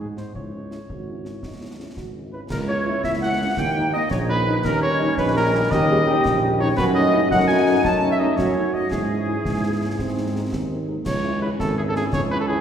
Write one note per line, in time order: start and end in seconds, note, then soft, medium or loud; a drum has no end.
0.00 0.26 G#2 soft
0.00 0.32 D#4 soft
0.17 0.24 G#3 soft
0.17 0.23 C4 soft
0.17 0.24 D#4 soft
0.17 0.34 C5 soft
0.17 snare soft
0.35 0.80 C#2 soft
0.35 0.83 E4 soft
0.35 1.93 C#5 medium
0.35 concert bass drum medium
0.54 0.60 G#3 soft
0.54 0.60 C#4 soft
0.54 0.61 E4 soft
0.71 0.78 G#3 soft
0.71 0.78 C#4 soft
0.71 0.78 E4 soft
0.71 snare soft
0.89 1.34 G#1 soft
0.89 1.29 F#4 medium
0.89 concert bass drum medium
1.08 1.14 G#3 soft
1.08 1.14 C#4 soft
1.08 1.14 E4 soft
1.25 1.33 G#3 soft
1.25 1.33 C#4 soft
1.25 1.33 E4 soft
1.25 1.44 E4 soft
1.25 snare soft
1.43 1.88 C#2 soft
1.43 1.53 D#4 soft
1.43 concert bass drum medium
1.43 snare soft
1.62 1.68 G#3 soft
1.62 1.68 C#4 soft
1.62 1.66 C#4 soft
1.62 1.68 E4 soft
1.71 1.79 D#4 soft
1.79 1.85 G#3 soft
1.79 1.96 C#4 soft
1.79 1.86 C#4 soft
1.79 1.86 E4 soft
1.97 2.37 G#1 medium
1.97 2.17 F#4 medium
1.97 concert bass drum medium
1.97 snare soft
2.15 2.22 G#3 soft
2.15 2.21 C#4 soft
2.15 2.21 E4 soft
2.15 2.23 E4 soft
2.23 2.27 D#4 soft
2.32 2.40 G#3 soft
2.32 2.49 C#4 soft
2.32 2.40 C#4 soft
2.32 2.40 E4 soft
2.32 2.41 B4 medium
2.32 2.39 B4 medium
2.50 2.95 C#2 loud
2.50 4.61 A#3 loud
2.50 3.54 E4 medium
2.50 2.67 A#4 medium
2.50 2.58 A#4 loud
2.50 concert bass drum medium
2.50 snare medium
2.50 crash medium
2.67 2.76 A#3 medium
2.67 2.76 C#4 medium
2.67 2.76 E4 medium
2.67 3.01 C#5 medium
2.67 3.02 C#5 loud
2.87 2.93 A#3 medium
2.87 2.93 C#4 medium
2.87 2.93 E4 medium
3.03 3.49 C#2 medium
3.03 3.59 E4 loud
3.03 3.22 E5 loud
3.03 3.12 E5 loud
3.03 concert bass drum medium
3.03 snare medium
3.21 3.29 A#3 medium
3.21 3.29 C#4 medium
3.21 3.29 E4 medium
3.21 3.55 F#5 loud
3.21 3.60 F#5 loud
3.40 3.47 A#3 medium
3.40 3.47 C#4 medium
3.40 3.47 E4 medium
3.57 4.02 D#2 medium
3.57 4.10 D#4 medium
3.57 4.65 D#4 medium
3.57 3.91 G5 loud
3.57 3.93 G5 loud
3.57 concert bass drum medium
3.57 snare medium
3.77 3.83 A#3 medium
3.77 3.83 D#4 medium
3.93 4.01 A#3 medium
3.93 4.01 D#4 medium
3.93 4.10 D#5 loud
4.10 4.56 A#1 loud
4.10 4.61 C#4 medium
4.10 4.19 C#5 loud
4.10 4.30 C#5 medium
4.10 concert bass drum medium
4.10 snare medium
4.29 4.37 A#3 medium
4.29 4.37 D#4 medium
4.29 4.67 B4 loud
4.29 4.62 B4 loud
4.48 4.54 A#3 medium
4.48 4.54 D#4 medium
4.64 5.09 D#2 loud
4.64 6.75 G3 loud
4.64 6.75 C#4 loud
4.64 5.68 D#4 loud
4.64 4.81 A#4 loud
4.64 4.82 A#4 loud
4.64 concert bass drum medium
4.64 snare medium
4.64 crash soft
4.83 4.90 G3 medium
4.83 4.90 C#4 medium
4.83 4.90 D#4 medium
4.83 5.16 C#5 loud
4.83 5.19 C#5 loud
5.00 5.06 G3 medium
5.00 5.07 C#4 loud
5.00 5.07 D#4 medium
5.16 5.63 A#1 loud
5.16 5.35 B4 loud
5.16 concert bass drum medium
5.16 snare medium
5.35 5.42 G3 loud
5.35 5.42 C#4 medium
5.35 5.42 D#4 medium
5.35 5.69 A#4 loud
5.35 5.73 A#4 loud
5.54 5.61 G3 medium
5.54 5.61 C#4 loud
5.54 5.61 D#4 loud
5.71 6.16 D#2 loud
5.71 5.88 G4 loud
5.71 6.43 D#5 loud
5.71 6.39 D#5 loud
5.71 concert bass drum medium
5.71 snare medium
5.89 5.96 G3 medium
5.89 5.96 C#4 medium
5.89 5.96 D#4 medium
5.89 5.98 G#4 loud
6.07 6.14 G3 loud
6.07 6.15 C#4 loud
6.07 6.14 D#4 loud
6.07 6.74 G4 loud
6.25 6.70 A#1 loud
6.25 concert bass drum medium
6.25 snare medium
6.42 6.49 G3 medium
6.42 6.49 C#4 medium
6.42 6.49 D#4 medium
6.60 6.67 G3 medium
6.60 6.67 C#4 loud
6.60 6.67 D#4 loud
6.60 6.68 C#5 loud
6.60 6.77 C#5 loud
6.77 7.23 F#2 loud
6.77 7.28 A3 loud
6.77 7.28 C#4 loud
6.77 7.28 F#4 loud
6.77 6.85 B4 loud
6.77 concert bass drum medium
6.77 snare medium
6.77 crash soft
6.95 7.02 A3 medium
6.95 7.02 C#4 medium
6.95 7.03 D#4 medium
6.95 7.29 D#5 loud
7.13 7.20 A3 medium
7.13 7.20 C#4 medium
7.13 7.20 D#4 loud
7.30 7.76 F#2 loud
7.30 7.81 A3 medium
7.30 7.81 C#4 medium
7.30 8.35 D#4 loud
7.30 7.39 F#5 loud
7.30 7.49 F#5 loud
7.30 concert bass drum medium
7.30 snare medium
7.47 7.55 A3 medium
7.47 7.55 C#4 medium
7.47 7.55 D#4 medium
7.47 7.82 G#5 loud
7.47 7.86 G#5 loud
7.67 7.73 A3 medium
7.67 7.74 C#4 loud
7.67 7.74 D#4 medium
7.84 8.29 F#2 medium
7.84 8.35 A3 loud
7.84 8.35 C#4 loud
7.84 7.97 A5 loud
7.84 8.11 A5 loud
7.84 concert bass drum loud
7.84 snare medium
8.03 8.10 A3 medium
8.03 8.10 C#4 medium
8.03 8.09 D#4 medium
8.11 8.21 E5 loud
8.11 8.15 E5 loud
8.20 8.27 A3 medium
8.20 8.27 C#4 medium
8.20 8.27 D#4 loud
8.20 8.26 D#5 medium
8.20 8.38 D#5 loud
8.37 8.83 F#2 medium
8.37 8.76 A3 medium
8.37 8.76 C#4 medium
8.37 8.94 F#4 loud
8.37 8.75 C#5 loud
8.37 8.72 C#5 medium
8.37 concert bass drum medium
8.37 snare medium
8.56 8.63 A3 medium
8.56 8.63 C#4 medium
8.56 8.63 D#4 medium
8.74 8.81 A3 medium
8.74 8.81 C#4 medium
8.74 8.81 D#4 medium
8.74 8.90 D#5 loud
8.74 8.91 D#5 loud
8.90 9.32 G#2 medium
8.90 9.99 E3 medium
8.90 9.95 C#4 medium
8.90 10.79 E4 medium
8.90 10.48 G#4 loud
8.90 10.48 G#4 medium
8.90 concert bass drum medium
8.90 snare medium
8.90 crash soft
9.11 9.17 G#3 medium
9.11 9.17 C#4 medium
9.11 9.17 E4 medium
9.29 9.35 G#3 medium
9.29 9.35 C#4 medium
9.29 9.35 E4 medium
9.45 9.90 G#2 medium
9.45 concert bass drum medium
9.45 snare medium
9.63 9.70 G#3 medium
9.63 9.70 C#4 medium
9.63 9.70 E4 medium
9.81 9.88 G#3 medium
9.81 9.88 C#4 medium
9.81 9.88 E4 medium
9.99 10.44 G#2 medium
9.99 10.88 D#3 medium
9.99 10.85 C4 medium
9.99 concert bass drum medium
9.99 snare medium
10.17 10.23 G#3 medium
10.17 10.23 C4 medium
10.17 10.23 D#4 medium
10.35 10.41 G#3 medium
10.35 10.42 C4 medium
10.35 10.41 D#4 medium
10.52 10.97 D#2 medium
10.52 concert bass drum medium
10.52 snare medium
10.71 10.77 G#3 medium
10.71 10.77 C4 medium
10.71 10.77 D#4 medium
10.88 10.95 G#3 medium
10.88 10.95 C4 medium
10.88 10.95 D#4 medium
11.06 11.51 C#2 loud
11.06 12.61 E3 loud
11.06 12.61 C#4 loud
11.06 11.39 C#5 loud
11.06 concert bass drum medium
11.06 snare medium
11.06 crash medium
11.23 11.30 G#3 medium
11.23 11.30 C#4 medium
11.23 11.30 E4 medium
11.42 11.48 G#3 medium
11.42 11.48 C#4 medium
11.42 11.48 E4 medium
11.42 11.50 B4 loud
11.59 12.04 G#1 loud
11.59 11.76 A4 loud
11.59 concert bass drum medium
11.59 snare medium
11.78 11.84 G#3 medium
11.78 11.84 C#4 medium
11.78 11.84 E4 medium
11.78 11.82 G#4 loud
11.88 11.92 A4 loud
11.96 12.02 G#3 medium
11.96 12.02 C#4 medium
11.96 12.02 E4 medium
11.96 12.04 G#4 loud
11.96 snare medium
12.12 12.57 C#2 loud
12.12 12.21 C#5 loud
12.12 concert bass drum loud
12.12 snare medium
12.31 12.38 G#3 medium
12.31 12.38 C#4 medium
12.31 12.38 E4 medium
12.31 12.39 B4 loud
12.40 12.44 A4 loud
12.48 12.55 G#3 medium
12.48 12.55 C#4 medium
12.48 12.55 E4 medium
12.48 12.61 G#4 loud